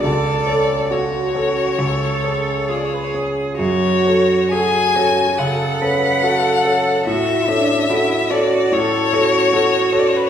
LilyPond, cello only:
\new Staff \with { instrumentName = "Cello" } { \time 4/4 \key fis \minor \tempo 4 = 70 a'4 fis'4 a'4 gis'4 | fis'4 gis'8 fis'8 a'8 b'8 a'4 | fis'8 d'8 e'8 fis'8 a'8 fis'4. | }